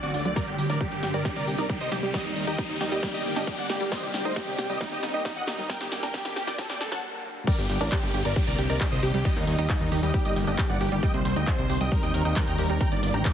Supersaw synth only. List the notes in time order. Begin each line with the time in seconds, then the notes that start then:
0.03 F#4 D5
0.14 D5
0.25 D5
0.36 A#4 D5
0.47 G4
0.58 G4
0.69 A#4 D5
0.81 G4
0.92 G4
1.03 G4
1.14 A#4 D5
1.25 G4
1.36 A#4 D5
1.47 G4
1.58 A#4 D5
1.70 G4
1.81 C5 D#5
1.92 G4
2.03 G4
2.14 G4 D#5
2.25 D#4
2.36 D#4
2.47 G4 D#5
2.58 D#4
2.70 D#4
2.81 D#4
2.92 G4 D#5
3.03 G4
3.14 G4 D#5
3.25 G4
3.36 G4 D#5
3.47 G4
3.58 D5 F#5
3.70 G4
3.81 G4
3.92 C5 D#5
4.03 G4
4.14 G4
4.25 C5 D#5
4.36 G4
4.47 G4
4.59 G4
4.70 G4 D#5
4.81 D#4
4.92 G4 D#5
5.03 D#4
5.14 G4 D#5
5.25 D#4
5.36 D#5 F#5
5.47 D#4
5.59 D#4
5.70 A#4 G5
5.81 G4
5.92 G4
6.03 A#4 G5
6.14 G4
6.25 G4
6.36 G4
6.47 D5 G5
6.58 A4
6.70 D5 G5
6.81 A4
6.92 F#5 A5
7.47 A#4 D5
7.58 G4
7.70 G4
7.81 A#4 D5
7.92 G4
8.03 G4
8.14 G4
8.25 A#4 D5
8.36 G4
8.47 A#4 D5
8.58 G4
8.70 A#4 D5
8.81 G4
8.92 C5 D#5
9.03 G4
9.14 G4
9.25 G4 D#5
9.36 D#4
9.47 D#4
9.59 G4 D#5
9.70 D#4
9.81 D#4
9.92 D#4
10.03 G4 D#5
10.14 G4
10.25 G4 D#5
10.36 G4
10.47 G4 D#5
10.59 G4
10.70 D5 F#5
10.81 G4
10.92 G4
11.03 D#5 G5
11.14 C5
11.25 C5
11.36 D#5 G5
11.47 C5
11.58 C5
11.70 C5
11.81 D#5 G5
11.92 A#4
12.03 D#5 G5
12.14 A#4
12.25 D#5 G5
12.36 A#4
12.47 G5 A#5
12.58 A#4
12.70 A#4
12.81 G5 A#5
12.92 D5
13.03 D5
13.14 G5 A#5
13.25 D5